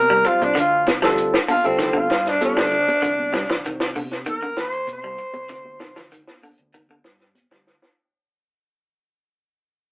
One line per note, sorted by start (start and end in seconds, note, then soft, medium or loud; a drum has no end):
0.00 0.23 C3 medium
0.00 0.29 A#4 medium
0.10 0.29 G3 medium
0.25 0.55 G3 medium
0.25 0.56 C4 medium
0.25 0.56 F4 medium
0.25 0.45 F4 medium
0.25 0.56 C5 medium
0.25 muted fingered electric bass stroke soft
0.25 kick medium
0.25 closed hi-hat medium
0.25 shekere soft
0.41 0.54 C2 medium
0.41 0.56 D4 medium
0.41 closed hi-hat medium
0.41 high conga medium
0.55 0.84 D2 medium
0.55 0.74 D3 medium
0.55 kick medium
0.55 closed hi-hat medium
0.55 shekere medium
0.60 0.88 F4 medium
0.87 1.01 C2 medium
0.87 kick medium
0.87 snare medium
0.87 closed hi-hat soft
0.87 high conga medium
0.87 shekere soft
1.02 1.31 D2 medium
1.02 1.11 F3 medium
1.02 1.36 G3 medium
1.02 1.37 C4 medium
1.02 1.36 F4 medium
1.02 1.37 A4 loud
1.02 kick medium
1.02 snare medium
1.18 closed hi-hat medium
1.18 shekere medium
1.34 snare medium
1.48 1.67 D3 medium
1.48 1.68 F4 medium
1.48 open hi-hat medium
1.48 high conga medium
1.48 shekere soft
1.64 2.08 D2 medium
1.64 2.06 G3 medium
1.64 2.06 C4 medium
1.64 2.00 C4 medium
1.64 2.07 F4 medium
1.64 2.07 A4 medium
1.64 closed hi-hat soft
1.79 1.88 D#3 medium
1.79 snare soft
1.79 closed hi-hat medium
1.79 shekere medium
1.93 2.13 D3 medium
1.93 high conga medium
1.98 2.30 F4 medium
2.10 2.39 G2 medium
2.10 kick medium
2.10 snare medium
2.10 closed hi-hat soft
2.10 shekere soft
2.26 2.41 D4 medium
2.26 snare soft
2.26 closed hi-hat soft
2.41 2.75 G3 medium
2.41 2.75 C4 medium
2.41 3.62 D4 medium
2.41 2.75 F4 medium
2.41 2.75 A4 medium
2.41 closed hi-hat medium
2.41 high conga medium
2.41 shekere medium
2.57 2.85 D2 medium
2.57 2.76 G3 medium
2.57 kick medium
2.57 snare medium
2.72 kick medium
2.72 closed hi-hat soft
2.72 shekere soft
2.88 closed hi-hat soft
2.88 high conga medium
3.02 3.61 C2 loud
3.02 3.21 D3 medium
3.02 kick medium
3.02 closed hi-hat medium
3.02 shekere medium
3.19 high conga medium
3.33 3.43 G3 medium
3.33 kick medium
3.33 snare medium
3.33 closed hi-hat soft
3.33 high conga medium
3.33 shekere soft
3.50 3.59 F3 medium
3.50 kick medium
3.50 snare medium
3.64 3.93 C2 medium
3.64 3.84 D#3 medium
3.64 closed hi-hat medium
3.64 shekere medium
3.80 snare medium
3.95 4.24 C3 medium
3.95 4.15 D3 medium
3.95 open hi-hat medium
3.95 high conga medium
3.95 shekere soft
4.11 snare soft
4.11 closed hi-hat soft
4.26 4.36 D#3 medium
4.26 4.58 A#4 medium
4.26 closed hi-hat medium
4.26 high conga medium
4.26 shekere medium
4.42 4.61 D3 medium
4.42 high conga medium
4.56 4.85 D#2 medium
4.56 snare medium
4.56 closed hi-hat medium
4.56 shekere soft
4.61 4.89 C5 loud
4.72 closed hi-hat soft
4.87 5.16 C3 medium
4.87 closed hi-hat medium
4.87 high conga medium
4.87 shekere medium
4.92 6.10 C5 medium
5.04 5.23 G3 medium
5.18 muted fingered electric bass stroke soft
5.18 kick medium
5.18 closed hi-hat soft
5.18 shekere soft
5.34 5.48 C2 medium
5.34 closed hi-hat soft
5.34 high conga medium
5.48 5.78 D2 medium
5.48 5.68 C3 medium
5.48 kick medium
5.48 snare soft
5.48 closed hi-hat medium
5.48 shekere medium
5.65 high conga medium
5.79 5.95 C2 medium
5.79 5.90 D#3 medium
5.79 kick medium
5.79 snare medium
5.79 closed hi-hat soft
5.79 high conga medium
5.79 shekere soft
5.96 6.25 D2 medium
5.96 6.06 F3 medium
5.96 kick medium
5.96 snare medium
6.11 6.31 D#3 medium
6.11 closed hi-hat medium
6.11 shekere medium
6.27 snare medium
6.27 high conga medium
6.42 6.62 D3 medium
6.42 open hi-hat medium
6.42 high conga medium
6.42 shekere soft
6.58 7.01 D2 medium
6.58 closed hi-hat soft
6.73 6.84 D#3 medium
6.73 closed hi-hat medium
6.73 high conga medium
6.73 shekere medium
6.89 7.09 D3 medium
6.89 high conga medium
7.04 7.33 G2 medium
7.04 kick medium
7.04 snare medium
7.04 closed hi-hat soft
7.04 shekere soft
7.20 snare soft
7.20 closed hi-hat soft
7.35 closed hi-hat medium
7.35 high conga medium
7.35 shekere medium
7.51 7.80 D2 medium
7.51 7.71 G3 medium
7.51 kick medium
7.51 snare medium
7.67 snare soft
7.67 shekere soft
7.82 snare medium
7.82 high conga medium